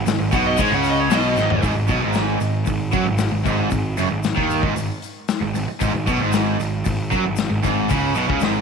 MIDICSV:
0, 0, Header, 1, 7, 480
1, 0, Start_track
1, 0, Key_signature, 5, "minor"
1, 0, Tempo, 522193
1, 1496, Time_signature, 4, 2, 24, 8
1, 7916, End_track
2, 0, Start_track
2, 0, Title_t, "Lead electric guitar"
2, 0, Program_c, 0, 29
2, 315, Note_on_c, 0, 78, 96
2, 426, Note_off_c, 0, 78, 0
2, 426, Note_on_c, 0, 75, 89
2, 556, Note_off_c, 0, 75, 0
2, 556, Note_on_c, 0, 73, 103
2, 664, Note_off_c, 0, 73, 0
2, 679, Note_on_c, 0, 78, 78
2, 785, Note_off_c, 0, 78, 0
2, 829, Note_on_c, 0, 75, 97
2, 916, Note_off_c, 0, 75, 0
2, 916, Note_on_c, 0, 73, 84
2, 1023, Note_off_c, 0, 73, 0
2, 1052, Note_on_c, 0, 75, 94
2, 1500, Note_off_c, 0, 75, 0
2, 7916, End_track
3, 0, Start_track
3, 0, Title_t, "Overdriven electric guitar"
3, 0, Program_c, 1, 29
3, 59, Note_on_c, 1, 44, 72
3, 167, Note_off_c, 1, 44, 0
3, 178, Note_on_c, 1, 44, 81
3, 297, Note_on_c, 1, 47, 93
3, 299, Note_off_c, 1, 44, 0
3, 530, Note_on_c, 1, 56, 106
3, 531, Note_off_c, 1, 47, 0
3, 647, Note_off_c, 1, 56, 0
3, 653, Note_on_c, 1, 49, 101
3, 1008, Note_off_c, 1, 49, 0
3, 1013, Note_on_c, 1, 47, 105
3, 1248, Note_off_c, 1, 47, 0
3, 1259, Note_on_c, 1, 44, 101
3, 1480, Note_off_c, 1, 44, 0
3, 1491, Note_on_c, 1, 44, 93
3, 1607, Note_off_c, 1, 44, 0
3, 1624, Note_on_c, 1, 44, 73
3, 1740, Note_off_c, 1, 44, 0
3, 1742, Note_on_c, 1, 47, 103
3, 1852, Note_off_c, 1, 47, 0
3, 1866, Note_on_c, 1, 44, 93
3, 2206, Note_off_c, 1, 44, 0
3, 2217, Note_on_c, 1, 44, 64
3, 2408, Note_off_c, 1, 44, 0
3, 2435, Note_on_c, 1, 44, 70
3, 2637, Note_off_c, 1, 44, 0
3, 2689, Note_on_c, 1, 54, 96
3, 2805, Note_off_c, 1, 54, 0
3, 2810, Note_on_c, 1, 44, 72
3, 3005, Note_off_c, 1, 44, 0
3, 3048, Note_on_c, 1, 44, 71
3, 3153, Note_off_c, 1, 44, 0
3, 3164, Note_on_c, 1, 44, 103
3, 3403, Note_off_c, 1, 44, 0
3, 3417, Note_on_c, 1, 44, 59
3, 3608, Note_off_c, 1, 44, 0
3, 3661, Note_on_c, 1, 42, 96
3, 3763, Note_off_c, 1, 42, 0
3, 3767, Note_on_c, 1, 44, 70
3, 3964, Note_off_c, 1, 44, 0
3, 4005, Note_on_c, 1, 51, 95
3, 4241, Note_on_c, 1, 44, 87
3, 4244, Note_off_c, 1, 51, 0
3, 4358, Note_off_c, 1, 44, 0
3, 4369, Note_on_c, 1, 44, 68
3, 4493, Note_off_c, 1, 44, 0
3, 4966, Note_on_c, 1, 44, 71
3, 5083, Note_off_c, 1, 44, 0
3, 5094, Note_on_c, 1, 44, 75
3, 5212, Note_off_c, 1, 44, 0
3, 5333, Note_on_c, 1, 44, 94
3, 5449, Note_off_c, 1, 44, 0
3, 5470, Note_on_c, 1, 44, 70
3, 5584, Note_off_c, 1, 44, 0
3, 5587, Note_on_c, 1, 47, 103
3, 5696, Note_off_c, 1, 47, 0
3, 5696, Note_on_c, 1, 44, 98
3, 6045, Note_off_c, 1, 44, 0
3, 6056, Note_on_c, 1, 44, 70
3, 6250, Note_off_c, 1, 44, 0
3, 6308, Note_on_c, 1, 44, 72
3, 6497, Note_off_c, 1, 44, 0
3, 6538, Note_on_c, 1, 54, 97
3, 6652, Note_off_c, 1, 54, 0
3, 6659, Note_on_c, 1, 44, 66
3, 6852, Note_off_c, 1, 44, 0
3, 6895, Note_on_c, 1, 44, 75
3, 7008, Note_off_c, 1, 44, 0
3, 7019, Note_on_c, 1, 44, 105
3, 7254, Note_off_c, 1, 44, 0
3, 7254, Note_on_c, 1, 49, 94
3, 7491, Note_off_c, 1, 49, 0
3, 7495, Note_on_c, 1, 47, 100
3, 7603, Note_off_c, 1, 47, 0
3, 7607, Note_on_c, 1, 49, 93
3, 7726, Note_on_c, 1, 44, 100
3, 7728, Note_off_c, 1, 49, 0
3, 7916, Note_off_c, 1, 44, 0
3, 7916, End_track
4, 0, Start_track
4, 0, Title_t, "Picked electric bass"
4, 0, Program_c, 2, 34
4, 53, Note_on_c, 2, 32, 81
4, 168, Note_off_c, 2, 32, 0
4, 172, Note_on_c, 2, 32, 75
4, 288, Note_off_c, 2, 32, 0
4, 299, Note_on_c, 2, 35, 105
4, 522, Note_off_c, 2, 35, 0
4, 546, Note_on_c, 2, 44, 106
4, 654, Note_off_c, 2, 44, 0
4, 662, Note_on_c, 2, 37, 101
4, 994, Note_off_c, 2, 37, 0
4, 1021, Note_on_c, 2, 35, 96
4, 1242, Note_off_c, 2, 35, 0
4, 1259, Note_on_c, 2, 32, 94
4, 1481, Note_off_c, 2, 32, 0
4, 1501, Note_on_c, 2, 32, 86
4, 1600, Note_off_c, 2, 32, 0
4, 1606, Note_on_c, 2, 32, 71
4, 1722, Note_off_c, 2, 32, 0
4, 1733, Note_on_c, 2, 35, 91
4, 1846, Note_off_c, 2, 35, 0
4, 1862, Note_on_c, 2, 32, 87
4, 2194, Note_off_c, 2, 32, 0
4, 2205, Note_on_c, 2, 32, 74
4, 2433, Note_off_c, 2, 32, 0
4, 2457, Note_on_c, 2, 32, 82
4, 2679, Note_off_c, 2, 32, 0
4, 2692, Note_on_c, 2, 42, 83
4, 2805, Note_off_c, 2, 42, 0
4, 2810, Note_on_c, 2, 32, 72
4, 3036, Note_off_c, 2, 32, 0
4, 3053, Note_on_c, 2, 32, 78
4, 3166, Note_off_c, 2, 32, 0
4, 3178, Note_on_c, 2, 32, 90
4, 3400, Note_off_c, 2, 32, 0
4, 3420, Note_on_c, 2, 32, 74
4, 3642, Note_off_c, 2, 32, 0
4, 3657, Note_on_c, 2, 30, 96
4, 3756, Note_off_c, 2, 30, 0
4, 3762, Note_on_c, 2, 32, 69
4, 3992, Note_off_c, 2, 32, 0
4, 4016, Note_on_c, 2, 39, 88
4, 4239, Note_off_c, 2, 39, 0
4, 4257, Note_on_c, 2, 32, 91
4, 4362, Note_off_c, 2, 32, 0
4, 4367, Note_on_c, 2, 32, 77
4, 4483, Note_off_c, 2, 32, 0
4, 4971, Note_on_c, 2, 32, 80
4, 5086, Note_off_c, 2, 32, 0
4, 5099, Note_on_c, 2, 32, 77
4, 5210, Note_off_c, 2, 32, 0
4, 5343, Note_on_c, 2, 32, 84
4, 5449, Note_off_c, 2, 32, 0
4, 5455, Note_on_c, 2, 32, 77
4, 5568, Note_off_c, 2, 32, 0
4, 5577, Note_on_c, 2, 35, 96
4, 5683, Note_off_c, 2, 35, 0
4, 5688, Note_on_c, 2, 32, 89
4, 6029, Note_off_c, 2, 32, 0
4, 6052, Note_on_c, 2, 32, 78
4, 6279, Note_off_c, 2, 32, 0
4, 6308, Note_on_c, 2, 32, 87
4, 6528, Note_off_c, 2, 32, 0
4, 6539, Note_on_c, 2, 42, 85
4, 6652, Note_off_c, 2, 42, 0
4, 6657, Note_on_c, 2, 32, 73
4, 6882, Note_off_c, 2, 32, 0
4, 6904, Note_on_c, 2, 32, 79
4, 7015, Note_off_c, 2, 32, 0
4, 7029, Note_on_c, 2, 32, 94
4, 7249, Note_off_c, 2, 32, 0
4, 7267, Note_on_c, 2, 37, 87
4, 7488, Note_off_c, 2, 37, 0
4, 7497, Note_on_c, 2, 35, 92
4, 7611, Note_off_c, 2, 35, 0
4, 7624, Note_on_c, 2, 37, 91
4, 7725, Note_off_c, 2, 37, 0
4, 7730, Note_on_c, 2, 32, 96
4, 7916, Note_off_c, 2, 32, 0
4, 7916, End_track
5, 0, Start_track
5, 0, Title_t, "Muted overdriven electric guitar strokes"
5, 5223, Note_on_c, 9, 29, 57
5, 5315, Note_off_c, 9, 29, 0
5, 7916, End_track
6, 0, Start_track
6, 0, Title_t, "Muted picked electric bass strokes"
6, 5221, Note_on_c, 9, 29, 41
6, 5313, Note_off_c, 9, 29, 0
6, 7916, End_track
7, 0, Start_track
7, 0, Title_t, "Drums"
7, 61, Note_on_c, 9, 82, 99
7, 72, Note_on_c, 9, 46, 91
7, 75, Note_on_c, 9, 38, 113
7, 153, Note_off_c, 9, 82, 0
7, 164, Note_off_c, 9, 46, 0
7, 167, Note_off_c, 9, 38, 0
7, 293, Note_on_c, 9, 82, 84
7, 302, Note_on_c, 9, 36, 109
7, 304, Note_on_c, 9, 46, 63
7, 385, Note_off_c, 9, 82, 0
7, 394, Note_off_c, 9, 36, 0
7, 396, Note_off_c, 9, 46, 0
7, 527, Note_on_c, 9, 82, 102
7, 543, Note_on_c, 9, 36, 111
7, 553, Note_on_c, 9, 46, 89
7, 618, Note_off_c, 9, 82, 0
7, 635, Note_off_c, 9, 36, 0
7, 645, Note_off_c, 9, 46, 0
7, 770, Note_on_c, 9, 82, 68
7, 790, Note_on_c, 9, 46, 59
7, 862, Note_off_c, 9, 82, 0
7, 881, Note_off_c, 9, 46, 0
7, 1018, Note_on_c, 9, 82, 102
7, 1024, Note_on_c, 9, 46, 91
7, 1026, Note_on_c, 9, 38, 126
7, 1110, Note_off_c, 9, 82, 0
7, 1116, Note_off_c, 9, 46, 0
7, 1118, Note_off_c, 9, 38, 0
7, 1256, Note_on_c, 9, 82, 81
7, 1269, Note_on_c, 9, 38, 60
7, 1347, Note_off_c, 9, 82, 0
7, 1361, Note_off_c, 9, 38, 0
7, 1382, Note_on_c, 9, 43, 107
7, 1474, Note_off_c, 9, 43, 0
7, 1496, Note_on_c, 9, 82, 74
7, 1502, Note_on_c, 9, 36, 109
7, 1511, Note_on_c, 9, 46, 74
7, 1588, Note_off_c, 9, 82, 0
7, 1594, Note_off_c, 9, 36, 0
7, 1603, Note_off_c, 9, 46, 0
7, 1723, Note_on_c, 9, 82, 66
7, 1740, Note_on_c, 9, 36, 98
7, 1742, Note_on_c, 9, 46, 52
7, 1815, Note_off_c, 9, 82, 0
7, 1832, Note_off_c, 9, 36, 0
7, 1834, Note_off_c, 9, 46, 0
7, 1961, Note_on_c, 9, 82, 86
7, 1980, Note_on_c, 9, 46, 70
7, 1983, Note_on_c, 9, 38, 113
7, 2053, Note_off_c, 9, 82, 0
7, 2072, Note_off_c, 9, 46, 0
7, 2075, Note_off_c, 9, 38, 0
7, 2211, Note_on_c, 9, 82, 65
7, 2221, Note_on_c, 9, 46, 49
7, 2303, Note_off_c, 9, 82, 0
7, 2313, Note_off_c, 9, 46, 0
7, 2445, Note_on_c, 9, 82, 86
7, 2458, Note_on_c, 9, 36, 87
7, 2459, Note_on_c, 9, 46, 71
7, 2537, Note_off_c, 9, 82, 0
7, 2550, Note_off_c, 9, 36, 0
7, 2551, Note_off_c, 9, 46, 0
7, 2685, Note_on_c, 9, 82, 63
7, 2697, Note_on_c, 9, 36, 98
7, 2698, Note_on_c, 9, 46, 44
7, 2777, Note_off_c, 9, 82, 0
7, 2789, Note_off_c, 9, 36, 0
7, 2790, Note_off_c, 9, 46, 0
7, 2925, Note_on_c, 9, 82, 87
7, 2927, Note_on_c, 9, 46, 74
7, 2929, Note_on_c, 9, 38, 106
7, 3017, Note_off_c, 9, 82, 0
7, 3019, Note_off_c, 9, 46, 0
7, 3021, Note_off_c, 9, 38, 0
7, 3173, Note_on_c, 9, 82, 68
7, 3174, Note_on_c, 9, 46, 53
7, 3178, Note_on_c, 9, 36, 100
7, 3265, Note_off_c, 9, 82, 0
7, 3266, Note_off_c, 9, 46, 0
7, 3270, Note_off_c, 9, 36, 0
7, 3406, Note_on_c, 9, 82, 82
7, 3419, Note_on_c, 9, 36, 89
7, 3419, Note_on_c, 9, 46, 76
7, 3498, Note_off_c, 9, 82, 0
7, 3511, Note_off_c, 9, 36, 0
7, 3511, Note_off_c, 9, 46, 0
7, 3653, Note_on_c, 9, 82, 76
7, 3663, Note_on_c, 9, 46, 50
7, 3745, Note_off_c, 9, 82, 0
7, 3755, Note_off_c, 9, 46, 0
7, 3891, Note_on_c, 9, 82, 102
7, 3902, Note_on_c, 9, 46, 79
7, 3904, Note_on_c, 9, 38, 107
7, 3983, Note_off_c, 9, 82, 0
7, 3994, Note_off_c, 9, 46, 0
7, 3996, Note_off_c, 9, 38, 0
7, 4020, Note_on_c, 9, 36, 104
7, 4026, Note_on_c, 9, 38, 30
7, 4112, Note_off_c, 9, 36, 0
7, 4118, Note_off_c, 9, 38, 0
7, 4140, Note_on_c, 9, 46, 52
7, 4140, Note_on_c, 9, 82, 79
7, 4232, Note_off_c, 9, 46, 0
7, 4232, Note_off_c, 9, 82, 0
7, 4257, Note_on_c, 9, 36, 114
7, 4349, Note_off_c, 9, 36, 0
7, 4374, Note_on_c, 9, 46, 78
7, 4382, Note_on_c, 9, 82, 94
7, 4466, Note_off_c, 9, 46, 0
7, 4474, Note_off_c, 9, 82, 0
7, 4615, Note_on_c, 9, 46, 51
7, 4625, Note_on_c, 9, 82, 67
7, 4707, Note_off_c, 9, 46, 0
7, 4717, Note_off_c, 9, 82, 0
7, 4858, Note_on_c, 9, 46, 74
7, 4859, Note_on_c, 9, 82, 85
7, 4861, Note_on_c, 9, 38, 119
7, 4950, Note_off_c, 9, 46, 0
7, 4950, Note_off_c, 9, 82, 0
7, 4953, Note_off_c, 9, 38, 0
7, 5100, Note_on_c, 9, 82, 71
7, 5105, Note_on_c, 9, 46, 60
7, 5192, Note_off_c, 9, 82, 0
7, 5197, Note_off_c, 9, 46, 0
7, 5335, Note_on_c, 9, 82, 94
7, 5346, Note_on_c, 9, 36, 109
7, 5354, Note_on_c, 9, 46, 77
7, 5427, Note_off_c, 9, 82, 0
7, 5438, Note_off_c, 9, 36, 0
7, 5446, Note_off_c, 9, 46, 0
7, 5578, Note_on_c, 9, 82, 83
7, 5583, Note_on_c, 9, 36, 92
7, 5584, Note_on_c, 9, 46, 51
7, 5670, Note_off_c, 9, 82, 0
7, 5675, Note_off_c, 9, 36, 0
7, 5676, Note_off_c, 9, 46, 0
7, 5814, Note_on_c, 9, 82, 100
7, 5825, Note_on_c, 9, 46, 81
7, 5828, Note_on_c, 9, 38, 105
7, 5906, Note_off_c, 9, 82, 0
7, 5917, Note_off_c, 9, 46, 0
7, 5920, Note_off_c, 9, 38, 0
7, 6064, Note_on_c, 9, 82, 81
7, 6074, Note_on_c, 9, 46, 52
7, 6156, Note_off_c, 9, 82, 0
7, 6166, Note_off_c, 9, 46, 0
7, 6295, Note_on_c, 9, 82, 97
7, 6309, Note_on_c, 9, 36, 94
7, 6313, Note_on_c, 9, 46, 72
7, 6387, Note_off_c, 9, 82, 0
7, 6401, Note_off_c, 9, 36, 0
7, 6405, Note_off_c, 9, 46, 0
7, 6536, Note_on_c, 9, 82, 70
7, 6546, Note_on_c, 9, 36, 88
7, 6547, Note_on_c, 9, 46, 48
7, 6628, Note_off_c, 9, 82, 0
7, 6638, Note_off_c, 9, 36, 0
7, 6639, Note_off_c, 9, 46, 0
7, 6767, Note_on_c, 9, 82, 93
7, 6787, Note_on_c, 9, 46, 76
7, 6789, Note_on_c, 9, 38, 109
7, 6859, Note_off_c, 9, 82, 0
7, 6879, Note_off_c, 9, 46, 0
7, 6881, Note_off_c, 9, 38, 0
7, 7016, Note_on_c, 9, 82, 72
7, 7028, Note_on_c, 9, 46, 52
7, 7029, Note_on_c, 9, 36, 97
7, 7108, Note_off_c, 9, 82, 0
7, 7120, Note_off_c, 9, 36, 0
7, 7120, Note_off_c, 9, 46, 0
7, 7256, Note_on_c, 9, 82, 91
7, 7269, Note_on_c, 9, 36, 104
7, 7277, Note_on_c, 9, 46, 68
7, 7348, Note_off_c, 9, 82, 0
7, 7361, Note_off_c, 9, 36, 0
7, 7369, Note_off_c, 9, 46, 0
7, 7489, Note_on_c, 9, 82, 80
7, 7505, Note_on_c, 9, 46, 48
7, 7581, Note_off_c, 9, 82, 0
7, 7597, Note_off_c, 9, 46, 0
7, 7627, Note_on_c, 9, 36, 112
7, 7719, Note_off_c, 9, 36, 0
7, 7726, Note_on_c, 9, 82, 99
7, 7746, Note_on_c, 9, 46, 73
7, 7748, Note_on_c, 9, 38, 108
7, 7818, Note_off_c, 9, 82, 0
7, 7838, Note_off_c, 9, 46, 0
7, 7840, Note_off_c, 9, 38, 0
7, 7916, End_track
0, 0, End_of_file